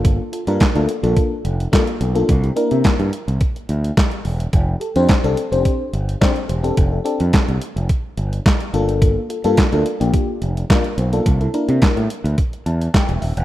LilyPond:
<<
  \new Staff \with { instrumentName = "FM electric piano" } { \time 4/4 \key f \major \tempo 4 = 107 <bes d' f' a'>16 r16 <f' a'>16 <bes d' f' bes'>16 r16 <bes d' f' a'>16 r16 <bes d' f' a'>8 r8. <bes d' f' a'>16 r16 <f' a'>16 <bes d' f' a'>16 | r16 <e' g'>16 <bes d' e' bes'>4 r2 r8 | r8 <g' a'>16 <c' d' g' c''>16 r16 <c' d' g' a'>16 r16 <c' d' g' c''>8 r8. <c' d' g' c''>16 r16 <g' c''>16 <c' d' g' a'>16 | r16 <g' a'>16 <c' d' g' a'>4 r2 <bes d' f' a'>8~ |
<bes d' f' a'>16 r16 <f' a'>16 <bes d' f' a'>16 r16 <bes d' f' a'>16 r16 <bes d' f' g'>8 r8. <bes d' f' bes'>16 r16 <f' c''>16 <bes d' f' a'>16 | r16 <e' a'>16 <bes d' e' bes'>4 r4 a''8 g''8 e''8 | }
  \new Staff \with { instrumentName = "Fingered electric bass" } { \clef bass \time 4/4 \key f \major g,,8 r16 g,16 r16 d,16 r16 bes,,16 r8 f,,8 r8 b,,8 | c,8 r16 c16 r16 g,16 r16 c,16 r8 d,8 r8 e,,8 | f,,8 r16 f,16 r16 c,16 r16 f,,16 r8 g,,8 r8 e,,8 | f,,8 r16 f,16 r16 c,16 r16 f,,16 r8 g,,8 r8 g,,8~ |
g,,8 r16 g,16 r16 d,16 r16 bes,,16 r8 f,,8 r8 b,,8 | c,8 r16 c16 r16 a,16 r16 d,16 r8 e,8 r16 e,,16 ees,,16 e,,16 | }
  \new DrumStaff \with { instrumentName = "Drums" } \drummode { \time 4/4 <hh bd>8 hh16 hh16 <hc hh bd sn>16 hh16 hh16 hh16 <hh bd>8 hh16 hh16 <hc hh bd sn>16 hh16 hh16 hh16 | <hh bd>16 hh16 hh16 hh16 <hc hh bd sn>16 hh16 hh16 hh16 <hh bd>16 hh16 hh16 hh16 <hc hh bd sn>16 hh16 hho16 hh16 | <hh bd>8 hh16 hh16 <hc hh bd sn>16 hh16 hh16 hh16 <hh bd>8 hh16 hh16 <hc hh bd sn>16 hh16 hh16 hh16 | <hh bd>8 hh16 hh16 <hc hh bd sn>16 hh16 hh16 hh16 <hh bd>8 hh16 hh16 <hc hh bd sn>16 hh16 hh16 hh16 |
<hh bd>8 hh16 hh16 <hc hh bd sn>16 hh16 hh16 hh16 <hh bd>8 hh16 hh16 <hc hh bd sn>16 hh16 hh16 hh16 | <hh bd>16 hh16 hh16 hh16 <hc hh bd sn>16 hh16 hh16 hh16 <hh bd>16 hh16 hh16 hh16 <hc hh bd sn>16 hh16 hho16 hh16 | }
>>